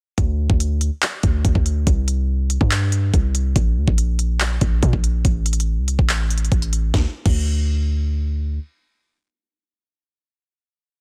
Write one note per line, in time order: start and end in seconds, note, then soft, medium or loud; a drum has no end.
0.18 0.48 D2 loud
0.18 kick loud
0.18 closed hi-hat medium
0.50 0.90 D2 loud
0.50 kick loud
0.60 closed hi-hat loud
0.81 closed hi-hat medium
1.02 clap loud
1.02 closed hi-hat medium
1.23 1.44 D2 loud
1.23 kick loud
1.23 closed hi-hat medium
1.45 1.55 D2 loud
1.45 kick medium
1.45 closed hi-hat medium
1.55 1.86 D2 loud
1.55 kick medium
1.66 closed hi-hat medium
1.87 2.58 C2 loud
1.87 kick loud
1.87 closed hi-hat medium
2.08 closed hi-hat medium
2.50 closed hi-hat medium
2.61 3.12 G2 loud
2.61 kick medium
2.71 clap loud
2.71 closed hi-hat medium
2.92 closed hi-hat medium
3.14 3.54 C2 loud
3.14 kick loud
3.14 closed hi-hat medium
3.35 closed hi-hat medium
3.56 3.78 A#1 loud
3.56 kick loud
3.56 closed hi-hat medium
3.77 3.87 D2 loud
3.88 4.59 A#1 loud
3.88 kick loud
3.98 closed hi-hat loud
4.19 closed hi-hat medium
4.40 clap loud
4.40 closed hi-hat medium
4.61 4.82 A#1 loud
4.61 kick loud
4.61 closed hi-hat medium
4.83 4.92 A#2 loud
4.83 kick loud
4.83 closed hi-hat medium
4.93 5.24 A#1 loud
4.93 kick medium
5.04 closed hi-hat medium
5.25 5.79 A1 loud
5.25 kick loud
5.25 closed hi-hat medium
5.46 closed hi-hat medium
5.46 open hi-hat medium
5.53 closed hi-hat medium
5.60 closed hi-hat medium
5.78 5.98 C2 loud
5.88 closed hi-hat medium
5.99 6.50 A1 loud
5.99 kick medium
6.09 clap loud
6.09 closed hi-hat medium
6.30 closed hi-hat medium
6.38 closed hi-hat medium
6.45 closed hi-hat soft
6.52 6.92 A1 loud
6.52 kick medium
6.52 closed hi-hat soft
6.62 closed hi-hat medium
6.73 closed hi-hat medium
6.94 7.06 D2 loud
6.94 kick loud
6.94 snare medium
7.26 8.59 D2 loud
7.26 kick loud
7.26 crash medium